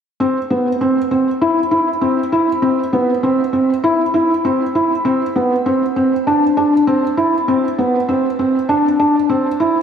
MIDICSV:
0, 0, Header, 1, 2, 480
1, 0, Start_track
1, 0, Key_signature, 0, "major"
1, 0, Tempo, 606061
1, 161, Time_signature, 4, 2, 24, 8
1, 7781, End_track
2, 0, Start_track
2, 0, Title_t, "Felt piano"
2, 0, Program_c, 0, 0
2, 159, Note_on_c, 0, 60, 67
2, 289, Note_off_c, 0, 60, 0
2, 399, Note_on_c, 0, 59, 61
2, 529, Note_off_c, 0, 59, 0
2, 641, Note_on_c, 0, 60, 63
2, 771, Note_off_c, 0, 60, 0
2, 880, Note_on_c, 0, 60, 60
2, 1010, Note_off_c, 0, 60, 0
2, 1120, Note_on_c, 0, 64, 68
2, 1250, Note_off_c, 0, 64, 0
2, 1356, Note_on_c, 0, 64, 60
2, 1487, Note_off_c, 0, 64, 0
2, 1595, Note_on_c, 0, 60, 60
2, 1726, Note_off_c, 0, 60, 0
2, 1840, Note_on_c, 0, 64, 64
2, 1970, Note_off_c, 0, 64, 0
2, 2076, Note_on_c, 0, 60, 69
2, 2207, Note_off_c, 0, 60, 0
2, 2319, Note_on_c, 0, 59, 62
2, 2449, Note_off_c, 0, 59, 0
2, 2559, Note_on_c, 0, 60, 69
2, 2689, Note_off_c, 0, 60, 0
2, 2795, Note_on_c, 0, 60, 58
2, 2926, Note_off_c, 0, 60, 0
2, 3039, Note_on_c, 0, 64, 70
2, 3169, Note_off_c, 0, 64, 0
2, 3278, Note_on_c, 0, 64, 62
2, 3408, Note_off_c, 0, 64, 0
2, 3522, Note_on_c, 0, 60, 64
2, 3651, Note_off_c, 0, 60, 0
2, 3763, Note_on_c, 0, 64, 66
2, 3892, Note_off_c, 0, 64, 0
2, 3998, Note_on_c, 0, 60, 71
2, 4129, Note_off_c, 0, 60, 0
2, 4242, Note_on_c, 0, 59, 64
2, 4371, Note_off_c, 0, 59, 0
2, 4482, Note_on_c, 0, 60, 67
2, 4611, Note_off_c, 0, 60, 0
2, 4722, Note_on_c, 0, 60, 61
2, 4851, Note_off_c, 0, 60, 0
2, 4965, Note_on_c, 0, 62, 69
2, 5094, Note_off_c, 0, 62, 0
2, 5203, Note_on_c, 0, 62, 62
2, 5332, Note_off_c, 0, 62, 0
2, 5443, Note_on_c, 0, 60, 69
2, 5572, Note_off_c, 0, 60, 0
2, 5681, Note_on_c, 0, 64, 70
2, 5811, Note_off_c, 0, 64, 0
2, 5924, Note_on_c, 0, 60, 69
2, 6053, Note_off_c, 0, 60, 0
2, 6165, Note_on_c, 0, 59, 61
2, 6294, Note_off_c, 0, 59, 0
2, 6404, Note_on_c, 0, 60, 65
2, 6532, Note_off_c, 0, 60, 0
2, 6645, Note_on_c, 0, 60, 60
2, 6774, Note_off_c, 0, 60, 0
2, 6882, Note_on_c, 0, 62, 67
2, 7011, Note_off_c, 0, 62, 0
2, 7124, Note_on_c, 0, 62, 65
2, 7253, Note_off_c, 0, 62, 0
2, 7361, Note_on_c, 0, 60, 67
2, 7491, Note_off_c, 0, 60, 0
2, 7603, Note_on_c, 0, 64, 65
2, 7732, Note_off_c, 0, 64, 0
2, 7781, End_track
0, 0, End_of_file